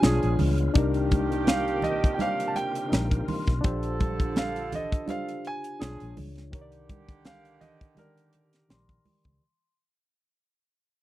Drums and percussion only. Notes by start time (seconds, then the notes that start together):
0.03 snare, closed hi-hat, high conga
0.23 closed hi-hat
0.39 open hi-hat, high conga, low conga
0.58 closed hi-hat
0.74 kick, closed hi-hat, muted conga
0.94 closed hi-hat
1.11 kick, closed hi-hat, high conga
1.32 closed hi-hat
1.47 snare, closed hi-hat, muted conga, high conga
1.68 closed hi-hat
1.82 closed hi-hat, muted conga, low conga
2.04 kick, closed hi-hat
2.19 closed hi-hat, high conga
2.40 closed hi-hat
2.56 closed hi-hat, muted conga
2.75 closed hi-hat
2.92 snare, closed hi-hat, muted conga, high conga
3.11 kick, closed hi-hat
3.28 open hi-hat, high conga, low conga
3.47 kick, snare, closed hi-hat
3.64 kick, closed hi-hat, muted conga
3.83 closed hi-hat
4.00 kick, closed hi-hat, muted conga, high conga
4.20 kick, closed hi-hat
4.36 snare, closed hi-hat, high conga
4.56 closed hi-hat
4.72 closed hi-hat, muted conga, low conga
4.92 kick, closed hi-hat
5.08 closed hi-hat, muted conga, high conga
5.28 closed hi-hat
5.45 closed hi-hat
5.64 closed hi-hat
5.81 snare, closed hi-hat, muted conga, high conga
6.00 closed hi-hat
6.17 open hi-hat, muted conga, high conga, low conga
6.36 snare, closed hi-hat
6.53 kick, closed hi-hat, muted conga
6.72 closed hi-hat
6.89 kick, closed hi-hat, muted conga, high conga
7.09 kick, closed hi-hat
7.25 snare, closed hi-hat, muted conga, high conga
7.45 closed hi-hat
7.61 closed hi-hat, muted conga, low conga
7.81 kick, closed hi-hat
7.97 closed hi-hat, high conga
8.17 closed hi-hat
8.33 closed hi-hat, muted conga
8.53 snare, closed hi-hat
8.70 snare, closed hi-hat, high conga
8.89 kick, closed hi-hat
9.05 open hi-hat, muted conga, high conga, low conga
9.24 kick, closed hi-hat, low conga